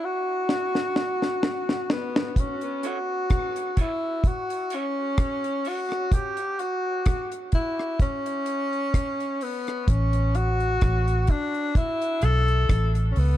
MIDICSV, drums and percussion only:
0, 0, Header, 1, 2, 480
1, 0, Start_track
1, 0, Tempo, 939114
1, 1209, Time_signature, 4, 2, 24, 8
1, 6835, End_track
2, 0, Start_track
2, 0, Title_t, "Drums"
2, 250, Note_on_c, 9, 38, 51
2, 302, Note_off_c, 9, 38, 0
2, 384, Note_on_c, 9, 38, 61
2, 436, Note_off_c, 9, 38, 0
2, 491, Note_on_c, 9, 38, 66
2, 542, Note_off_c, 9, 38, 0
2, 625, Note_on_c, 9, 38, 59
2, 676, Note_off_c, 9, 38, 0
2, 731, Note_on_c, 9, 38, 86
2, 782, Note_off_c, 9, 38, 0
2, 864, Note_on_c, 9, 38, 74
2, 915, Note_off_c, 9, 38, 0
2, 971, Note_on_c, 9, 38, 89
2, 1022, Note_off_c, 9, 38, 0
2, 1105, Note_on_c, 9, 38, 98
2, 1156, Note_off_c, 9, 38, 0
2, 1207, Note_on_c, 9, 36, 115
2, 1208, Note_on_c, 9, 42, 98
2, 1258, Note_off_c, 9, 36, 0
2, 1259, Note_off_c, 9, 42, 0
2, 1335, Note_on_c, 9, 42, 55
2, 1387, Note_off_c, 9, 42, 0
2, 1447, Note_on_c, 9, 42, 70
2, 1499, Note_off_c, 9, 42, 0
2, 1686, Note_on_c, 9, 42, 80
2, 1689, Note_on_c, 9, 36, 107
2, 1690, Note_on_c, 9, 37, 99
2, 1737, Note_off_c, 9, 42, 0
2, 1740, Note_off_c, 9, 36, 0
2, 1741, Note_off_c, 9, 37, 0
2, 1820, Note_on_c, 9, 42, 65
2, 1871, Note_off_c, 9, 42, 0
2, 1926, Note_on_c, 9, 42, 87
2, 1928, Note_on_c, 9, 36, 86
2, 1977, Note_off_c, 9, 42, 0
2, 1979, Note_off_c, 9, 36, 0
2, 2166, Note_on_c, 9, 36, 116
2, 2167, Note_on_c, 9, 42, 82
2, 2217, Note_off_c, 9, 36, 0
2, 2218, Note_off_c, 9, 42, 0
2, 2301, Note_on_c, 9, 42, 65
2, 2352, Note_off_c, 9, 42, 0
2, 2404, Note_on_c, 9, 42, 75
2, 2455, Note_off_c, 9, 42, 0
2, 2646, Note_on_c, 9, 42, 97
2, 2647, Note_on_c, 9, 36, 117
2, 2647, Note_on_c, 9, 37, 107
2, 2697, Note_off_c, 9, 42, 0
2, 2698, Note_off_c, 9, 36, 0
2, 2698, Note_off_c, 9, 37, 0
2, 2781, Note_on_c, 9, 42, 54
2, 2833, Note_off_c, 9, 42, 0
2, 2887, Note_on_c, 9, 46, 60
2, 2938, Note_off_c, 9, 46, 0
2, 3019, Note_on_c, 9, 42, 37
2, 3025, Note_on_c, 9, 37, 78
2, 3070, Note_off_c, 9, 42, 0
2, 3076, Note_off_c, 9, 37, 0
2, 3126, Note_on_c, 9, 36, 123
2, 3127, Note_on_c, 9, 42, 108
2, 3177, Note_off_c, 9, 36, 0
2, 3178, Note_off_c, 9, 42, 0
2, 3255, Note_on_c, 9, 42, 58
2, 3306, Note_off_c, 9, 42, 0
2, 3369, Note_on_c, 9, 42, 61
2, 3420, Note_off_c, 9, 42, 0
2, 3606, Note_on_c, 9, 42, 91
2, 3609, Note_on_c, 9, 36, 118
2, 3610, Note_on_c, 9, 37, 113
2, 3657, Note_off_c, 9, 42, 0
2, 3660, Note_off_c, 9, 36, 0
2, 3661, Note_off_c, 9, 37, 0
2, 3739, Note_on_c, 9, 42, 60
2, 3790, Note_off_c, 9, 42, 0
2, 3843, Note_on_c, 9, 42, 76
2, 3848, Note_on_c, 9, 36, 92
2, 3894, Note_off_c, 9, 42, 0
2, 3899, Note_off_c, 9, 36, 0
2, 3984, Note_on_c, 9, 37, 64
2, 4035, Note_off_c, 9, 37, 0
2, 4087, Note_on_c, 9, 36, 118
2, 4087, Note_on_c, 9, 42, 82
2, 4138, Note_off_c, 9, 36, 0
2, 4138, Note_off_c, 9, 42, 0
2, 4222, Note_on_c, 9, 42, 62
2, 4273, Note_off_c, 9, 42, 0
2, 4324, Note_on_c, 9, 42, 72
2, 4375, Note_off_c, 9, 42, 0
2, 4461, Note_on_c, 9, 42, 34
2, 4512, Note_off_c, 9, 42, 0
2, 4570, Note_on_c, 9, 36, 105
2, 4570, Note_on_c, 9, 42, 108
2, 4571, Note_on_c, 9, 37, 102
2, 4621, Note_off_c, 9, 36, 0
2, 4621, Note_off_c, 9, 42, 0
2, 4622, Note_off_c, 9, 37, 0
2, 4704, Note_on_c, 9, 42, 51
2, 4755, Note_off_c, 9, 42, 0
2, 4809, Note_on_c, 9, 46, 67
2, 4860, Note_off_c, 9, 46, 0
2, 4942, Note_on_c, 9, 42, 35
2, 4948, Note_on_c, 9, 37, 70
2, 4993, Note_off_c, 9, 42, 0
2, 4999, Note_off_c, 9, 37, 0
2, 5049, Note_on_c, 9, 36, 122
2, 5049, Note_on_c, 9, 42, 108
2, 5100, Note_off_c, 9, 36, 0
2, 5100, Note_off_c, 9, 42, 0
2, 5178, Note_on_c, 9, 42, 60
2, 5229, Note_off_c, 9, 42, 0
2, 5288, Note_on_c, 9, 42, 63
2, 5339, Note_off_c, 9, 42, 0
2, 5418, Note_on_c, 9, 42, 36
2, 5469, Note_off_c, 9, 42, 0
2, 5527, Note_on_c, 9, 42, 83
2, 5530, Note_on_c, 9, 36, 106
2, 5531, Note_on_c, 9, 37, 102
2, 5578, Note_off_c, 9, 42, 0
2, 5581, Note_off_c, 9, 36, 0
2, 5582, Note_off_c, 9, 37, 0
2, 5661, Note_on_c, 9, 42, 59
2, 5713, Note_off_c, 9, 42, 0
2, 5762, Note_on_c, 9, 42, 79
2, 5768, Note_on_c, 9, 36, 95
2, 5813, Note_off_c, 9, 42, 0
2, 5819, Note_off_c, 9, 36, 0
2, 5900, Note_on_c, 9, 42, 32
2, 5951, Note_off_c, 9, 42, 0
2, 6007, Note_on_c, 9, 36, 118
2, 6007, Note_on_c, 9, 42, 82
2, 6058, Note_off_c, 9, 36, 0
2, 6058, Note_off_c, 9, 42, 0
2, 6142, Note_on_c, 9, 42, 64
2, 6193, Note_off_c, 9, 42, 0
2, 6243, Note_on_c, 9, 42, 67
2, 6295, Note_off_c, 9, 42, 0
2, 6380, Note_on_c, 9, 42, 39
2, 6431, Note_off_c, 9, 42, 0
2, 6488, Note_on_c, 9, 36, 103
2, 6488, Note_on_c, 9, 42, 94
2, 6489, Note_on_c, 9, 37, 112
2, 6539, Note_off_c, 9, 36, 0
2, 6539, Note_off_c, 9, 42, 0
2, 6540, Note_off_c, 9, 37, 0
2, 6620, Note_on_c, 9, 42, 55
2, 6671, Note_off_c, 9, 42, 0
2, 6726, Note_on_c, 9, 46, 61
2, 6777, Note_off_c, 9, 46, 0
2, 6835, End_track
0, 0, End_of_file